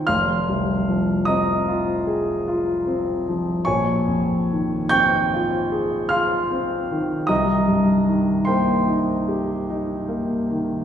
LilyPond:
<<
  \new Staff \with { instrumentName = "Grand piano" } { \time 9/8 \key bes \dorian \tempo 4. = 50 <f'' c''' f'''>4. <ees'' bes'' ees'''>2~ <ees'' bes'' ees'''>8 r8 | <des'' aes'' des'''>4. <g'' des''' g'''>4. <f'' c''' f'''>4. | <ees'' bes'' ees'''>4. <c'' g'' c'''>2~ <c'' g'' c'''>8 r8 | }
  \new Staff \with { instrumentName = "Grand piano" } { \time 9/8 \key bes \dorian f,,8 c,8 f8 c'8 f'8 aes'8 f'8 c'8 f8 | bes,,8 f,8 ees8 c'8 f'8 aes'8 f'8 c'8 ees8 | c,8 g,8 ees8 bes8 ees'8 g'8 ees'8 bes8 ees8 | }
>>